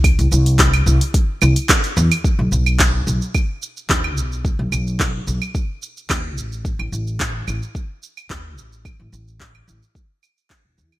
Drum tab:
HH |oo-ooo-oo--ooo-o|----------------|----------------|----------------|
SH |xxxxxxxxx-xxxxxx|x-xxx-xxx-xxx-xx|x-xxx-xxx-xxx-xx|x-xxx-xxx-xxx-xx|
CL |x----x----x----x|---x----x----x--|--x----x----x---|-x----x----x----|
CP |----x-------x---|----x-------x---|----x-------x---|----x-------x---|
BD |o---o---o---o---|o---o---o---o---|o---o---o---o---|o---o---o---o---|

HH |----------------|
SH |x-xxx-xxx-xxx-xx|
CL |x----x----x----x|
CP |----x-------x---|
BD |o---o---o---o---|